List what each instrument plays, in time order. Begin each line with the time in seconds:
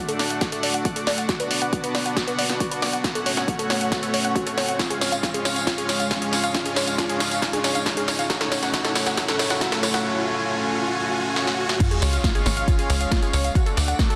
Already playing: supersaw synth A3 D4 F#4 D5 F#5, riser
0.09 synth arpeggio sound A4, closed hi-hat
0.19 synth arpeggio sound D5, snare, open hi-hat
0.30 synth arpeggio sound F#5, closed hi-hat
0.41 synth arpeggio sound F#4, kick, snare, closed hi-hat
0.52 synth arpeggio sound A4, closed hi-hat
0.63 synth arpeggio sound D5, open hi-hat
0.74 synth arpeggio sound F#5, closed hi-hat
0.85 synth arpeggio sound F#4, kick, closed hi-hat
0.96 synth arpeggio sound A4, closed hi-hat
1.07 synth arpeggio sound D5, snare, open hi-hat
1.18 synth arpeggio sound F#5, closed hi-hat
1.29 supersaw synth B3 D4 F#5, synth arpeggio sound F#4, kick, snare, closed hi-hat
1.40 synth arpeggio sound B4, closed hi-hat
1.51 synth arpeggio sound D5, open hi-hat
1.62 synth arpeggio sound F#5, closed hi-hat
1.73 synth arpeggio sound F#4, kick, closed hi-hat
1.84 synth arpeggio sound B4, closed hi-hat
1.95 synth arpeggio sound D5, snare, open hi-hat
2.06 synth arpeggio sound F#5, closed hi-hat
2.17 synth arpeggio sound F#4, kick, snare, closed hi-hat
2.27 synth arpeggio sound B4, closed hi-hat
2.38 synth arpeggio sound D5, open hi-hat
2.49 synth arpeggio sound F#5, snare, closed hi-hat
2.60 synth arpeggio sound F#4, kick, closed hi-hat
2.71 synth arpeggio sound B4, closed hi-hat
2.82 synth arpeggio sound D5, snare, open hi-hat
2.93 synth arpeggio sound F#5, closed hi-hat
3.04 supersaw synth A3 C#4 C#5, synth arpeggio sound F#4, kick, snare, closed hi-hat
3.15 synth arpeggio sound A4, closed hi-hat
3.26 synth arpeggio sound C#5, open hi-hat
3.37 synth arpeggio sound F#5, snare, closed hi-hat
3.48 synth arpeggio sound F#4, kick, closed hi-hat
3.59 synth arpeggio sound A4, closed hi-hat
3.70 synth arpeggio sound C#5, snare, open hi-hat
3.81 synth arpeggio sound F#5, closed hi-hat
3.92 synth arpeggio sound F#4, kick, snare, closed hi-hat
4.03 synth arpeggio sound A4, closed hi-hat
4.14 synth arpeggio sound C#5, open hi-hat
4.25 synth arpeggio sound F#5, closed hi-hat
4.36 synth arpeggio sound F#4, kick, closed hi-hat
4.47 synth arpeggio sound A4, closed hi-hat
4.58 synth arpeggio sound C#5, snare, open hi-hat
4.68 synth arpeggio sound F#5, closed hi-hat
4.79 supersaw synth G#3 F4 C#5 F5, synth arpeggio sound F4, kick, snare, closed hi-hat, tambourine
4.90 synth arpeggio sound G#4, closed hi-hat
5.01 synth arpeggio sound C#5, snare, open hi-hat, tambourine
5.12 synth arpeggio sound F5, closed hi-hat, tambourine
5.23 synth arpeggio sound F4, kick, snare, closed hi-hat, tambourine
5.34 synth arpeggio sound G#4, closed hi-hat
5.45 synth arpeggio sound C#5, snare, open hi-hat, tambourine
5.56 synth arpeggio sound F5, closed hi-hat, tambourine
5.67 synth arpeggio sound F4, kick, snare, closed hi-hat
5.78 synth arpeggio sound G#4, closed hi-hat
5.89 synth arpeggio sound C#5, snare, open hi-hat, tambourine
6.00 synth arpeggio sound F5, closed hi-hat, tambourine
6.11 synth arpeggio sound F4, kick, snare, closed hi-hat
6.22 synth arpeggio sound G#4, closed hi-hat
6.33 synth arpeggio sound C#5, snare, open hi-hat, tambourine
6.44 synth arpeggio sound F5, closed hi-hat, tambourine
6.55 synth arpeggio sound F4, kick, snare, closed hi-hat
6.66 synth arpeggio sound G#4, closed hi-hat
6.76 synth arpeggio sound C#5, snare, open hi-hat, tambourine
6.87 synth arpeggio sound F5, closed hi-hat, tambourine
6.98 synth arpeggio sound F4, kick, snare, closed hi-hat
7.09 synth arpeggio sound G#4, closed hi-hat
7.20 synth arpeggio sound C#5, snare, open hi-hat, tambourine
7.31 synth arpeggio sound F5, closed hi-hat, tambourine
7.42 synth arpeggio sound F4, kick, snare, closed hi-hat
7.53 synth arpeggio sound G#4, closed hi-hat
7.64 synth arpeggio sound C#5, snare, open hi-hat, tambourine
7.75 synth arpeggio sound F5, closed hi-hat, tambourine
7.86 synth arpeggio sound F4, kick, snare, closed hi-hat
7.97 synth arpeggio sound G#4, closed hi-hat
8.08 synth arpeggio sound C#5, snare, open hi-hat, tambourine
8.19 synth arpeggio sound F5, closed hi-hat, tambourine
8.30 supersaw synth A3 F#4 F#5, synth arpeggio sound F#4, kick, snare, closed hi-hat, tambourine
8.41 synth arpeggio sound A4, snare, closed hi-hat
8.52 synth arpeggio sound C#5, snare, open hi-hat, tambourine
8.63 synth arpeggio sound F#5, snare, closed hi-hat, tambourine
8.74 synth arpeggio sound F#4, kick, snare, closed hi-hat, tambourine
8.85 synth arpeggio sound A4, snare, closed hi-hat
8.95 synth arpeggio sound C#5, snare, open hi-hat, tambourine
9.06 synth arpeggio sound F#5, snare, closed hi-hat, tambourine
9.17 synth arpeggio sound F#4, kick, snare, closed hi-hat, tambourine
9.28 synth arpeggio sound A4, snare, closed hi-hat
9.39 synth arpeggio sound C#5, snare, open hi-hat, tambourine
9.50 synth arpeggio sound F#5, snare, closed hi-hat, tambourine
9.61 synth arpeggio sound F#4, kick, snare, closed hi-hat
9.72 synth arpeggio sound A4, snare, closed hi-hat
9.83 synth arpeggio sound C#5, snare, open hi-hat, tambourine
9.94 synth arpeggio sound F#5, snare, closed hi-hat, tambourine
10.05 supersaw synth G#5
11.36 snare
11.47 snare
11.69 snare
11.80 supersaw synth G#3 C#4 F4 C#5 F5, synth arpeggio sound F4, kick, closed hi-hat, crash, tambourine, sub drop
11.91 synth arpeggio sound G#4, closed hi-hat, tambourine
12.02 analog synth bass C#2, synth arpeggio sound C#5, open hi-hat, tambourine
12.13 synth arpeggio sound F5, closed hi-hat, tambourine
12.24 synth arpeggio sound F4, kick, snare, closed hi-hat, tambourine
12.35 synth arpeggio sound G#4, closed hi-hat, tambourine
12.46 analog synth bass G#1, synth arpeggio sound C#5, snare, open hi-hat, tambourine
12.57 synth arpeggio sound F5, closed hi-hat, tambourine
12.68 synth arpeggio sound F4, kick, closed hi-hat, tambourine
12.79 synth arpeggio sound G#4, closed hi-hat, tambourine
12.90 analog synth bass C#2, synth arpeggio sound C#5, open hi-hat, tambourine
13.01 synth arpeggio sound F5, closed hi-hat, tambourine
13.11 synth arpeggio sound F4, kick, snare, closed hi-hat
13.22 synth arpeggio sound G#4, closed hi-hat, tambourine
13.33 analog synth bass C#2, synth arpeggio sound C#5, open hi-hat, tambourine
13.44 synth arpeggio sound F5, closed hi-hat, tambourine
13.55 supersaw synth A3 D4 F#4 D5 F#5, synth arpeggio sound F#4, kick, closed hi-hat, tambourine
13.66 synth arpeggio sound A4, closed hi-hat, tambourine
13.77 analog synth bass D2, synth arpeggio sound D5, open hi-hat, tambourine
13.88 synth arpeggio sound F#5, closed hi-hat, tambourine
13.99 synth arpeggio sound F#4, kick, snare, closed hi-hat
14.10 synth arpeggio sound A4, closed hi-hat, tambourine